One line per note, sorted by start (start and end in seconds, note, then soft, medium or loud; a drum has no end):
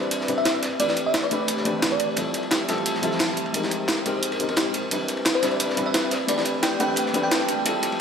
0.00 0.28 G3 medium
0.00 0.29 C4 medium
0.00 2.14 C4 medium
0.00 0.29 D4 medium
0.00 0.29 E4 medium
0.00 0.62 E4 medium
0.00 0.29 B4 medium
0.00 2.15 B4 medium
0.00 2.15 D5 medium
0.00 ride soft
0.11 closed hi-hat medium
0.11 ride medium
0.21 snare soft
0.28 0.62 G3 medium
0.28 0.62 C4 medium
0.28 0.62 D4 medium
0.28 0.62 E4 medium
0.28 0.62 B4 medium
0.28 closed hi-hat medium
0.28 ride medium
0.38 0.58 E5 medium
0.38 ride soft
0.45 snare loud
0.45 snare medium
0.45 closed hi-hat medium
0.45 ride medium
0.62 3.51 A3 medium
0.62 2.15 G4 medium
0.62 snare medium
0.62 closed hi-hat medium
0.62 ride medium
0.79 1.29 A3 medium
0.79 1.29 C4 medium
0.79 1.30 D4 medium
0.79 1.30 G4 medium
0.79 1.30 B4 medium
0.79 0.86 D5 medium
0.79 closed hi-hat medium
0.79 ride medium
0.88 0.94 D5 medium
0.88 snare soft
0.96 closed hi-hat medium
0.96 ride medium
1.06 1.22 E5 medium
1.14 snare loud
1.14 closed hi-hat medium
1.14 ride medium
1.23 1.44 D5 medium
1.31 1.63 A3 medium
1.31 1.64 C4 medium
1.31 1.64 D4 medium
1.31 1.64 G4 medium
1.31 1.64 B4 loud
1.31 closed hi-hat medium
1.31 ride medium
1.48 closed hi-hat medium
1.48 ride medium
1.57 snare soft
1.65 2.15 A3 medium
1.65 2.15 C4 medium
1.65 2.15 D4 medium
1.65 2.16 G4 medium
1.65 2.16 B4 medium
1.65 closed hi-hat medium
1.65 ride medium
1.82 snare loud
1.82 closed hi-hat medium
1.82 ride medium
1.91 2.17 D5 medium
1.91 ride soft
2.00 closed hi-hat medium
2.00 ride medium
2.16 3.53 F3 medium
2.16 2.66 G3 medium
2.16 2.67 C4 medium
2.16 2.67 E4 medium
2.16 2.67 F4 medium
2.16 4.89 G4 medium
2.16 2.68 A4 medium
2.16 3.53 E5 medium
2.16 closed hi-hat medium
2.16 ride medium
2.34 closed hi-hat medium
2.34 ride medium
2.43 ride soft
2.51 snare loud
2.51 closed hi-hat medium
2.51 ride medium
2.68 3.00 G3 medium
2.68 3.01 C4 medium
2.68 3.01 E4 medium
2.68 3.01 F4 medium
2.68 3.01 A4 medium
2.68 snare medium
2.68 closed hi-hat medium
2.68 ride medium
2.78 ride soft
2.86 closed hi-hat medium
2.86 ride medium
2.95 snare soft
3.02 3.52 G3 medium
3.02 3.52 C4 medium
3.02 3.52 E4 medium
3.02 3.53 F4 medium
3.02 3.53 A4 loud
3.02 closed hi-hat medium
3.02 ride medium
3.11 snare soft
3.19 snare loud
3.19 closed hi-hat medium
3.19 ride medium
3.29 snare medium
3.37 closed hi-hat medium
3.37 ride medium
3.46 ride soft
3.53 4.03 G#3 medium
3.53 4.90 G#3 medium
3.53 4.04 C4 medium
3.53 4.04 D#4 medium
3.53 4.04 G4 medium
3.53 4.90 A#4 medium
3.53 4.05 A#4 medium
3.53 4.90 C5 medium
3.53 closed hi-hat medium
3.53 ride medium
3.63 snare soft
3.71 closed hi-hat medium
3.71 ride medium
3.88 snare loud
3.88 closed hi-hat medium
3.88 ride medium
4.05 4.38 G#3 medium
4.05 4.38 C4 medium
4.05 4.38 D#4 medium
4.05 4.38 G4 medium
4.05 4.39 A#4 loud
4.05 closed hi-hat medium
4.05 ride medium
4.23 closed hi-hat medium
4.23 ride medium
4.32 ride medium
4.40 4.46 G#3 medium
4.40 4.47 C4 medium
4.40 4.47 D#4 medium
4.40 4.48 G4 medium
4.40 4.48 A#4 medium
4.40 closed hi-hat medium
4.48 4.89 G#3 medium
4.48 4.89 C4 medium
4.48 4.89 D#4 medium
4.48 4.90 G4 medium
4.48 4.90 A#4 medium
4.48 ride medium
4.56 snare loud
4.56 closed hi-hat medium
4.56 ride medium
4.74 closed hi-hat medium
4.74 ride medium
4.90 5.40 G3 medium
4.90 5.41 C4 medium
4.90 7.63 C4 medium
4.90 5.41 D4 medium
4.90 6.10 E4 medium
4.90 5.41 E4 medium
4.90 7.63 B4 medium
4.90 5.42 B4 medium
4.90 6.10 D5 medium
4.90 closed hi-hat medium
4.90 ride medium
4.90 riser medium
5.08 closed hi-hat medium
5.08 ride medium
5.17 ride soft
5.25 snare loud
5.25 closed hi-hat medium
5.25 ride medium
5.35 5.55 C5 medium
5.42 5.75 G3 medium
5.42 5.75 C4 medium
5.42 5.75 D4 medium
5.42 5.75 E4 medium
5.42 5.75 B4 medium
5.42 snare medium
5.42 closed hi-hat medium
5.42 ride medium
5.51 ride soft
5.60 closed hi-hat medium
5.60 ride medium
5.70 snare soft
5.76 6.10 G3 medium
5.76 6.10 C4 medium
5.76 6.10 D4 medium
5.76 6.11 E4 medium
5.76 6.11 B4 loud
5.76 closed hi-hat medium
5.76 ride medium
5.86 6.07 E5 medium
5.86 ride soft
5.94 snare loud
5.94 closed hi-hat medium
5.94 ride medium
6.11 7.64 A3 medium
6.11 8.01 G4 medium
6.11 7.64 D5 medium
6.11 snare medium
6.11 closed hi-hat medium
6.11 ride medium
6.27 6.77 A3 medium
6.27 6.78 C4 medium
6.27 6.78 D4 medium
6.27 6.78 G4 medium
6.27 6.79 B4 medium
6.27 6.35 D5 medium
6.27 closed hi-hat medium
6.27 ride medium
6.38 6.43 D5 medium
6.38 snare soft
6.45 closed hi-hat medium
6.45 ride medium
6.63 6.78 G5 medium
6.63 snare loud
6.63 closed hi-hat medium
6.63 ride medium
6.79 7.12 A3 medium
6.79 7.12 C4 medium
6.79 7.12 D4 medium
6.79 7.12 G4 medium
6.79 7.13 B4 loud
6.79 7.01 G5 medium
6.79 closed hi-hat medium
6.79 ride medium
6.96 closed hi-hat medium
6.96 ride medium
7.06 snare soft
7.13 7.63 A3 medium
7.13 7.64 C4 medium
7.13 7.64 D4 medium
7.13 7.64 G4 medium
7.13 7.65 B4 loud
7.13 closed hi-hat medium
7.13 ride medium
7.23 7.58 G5 medium
7.31 snare loud
7.31 closed hi-hat medium
7.31 ride medium
7.41 ride soft
7.48 closed hi-hat medium
7.48 ride medium
7.64 8.01 F3 medium
7.64 8.01 G3 medium
7.64 8.01 A3 medium
7.64 8.01 C4 medium
7.64 8.01 E4 medium
7.64 8.01 F4 medium
7.64 8.01 A4 medium
7.64 8.01 E5 medium
7.64 closed hi-hat medium
7.64 ride medium
7.83 closed hi-hat medium
7.83 ride medium
7.92 ride soft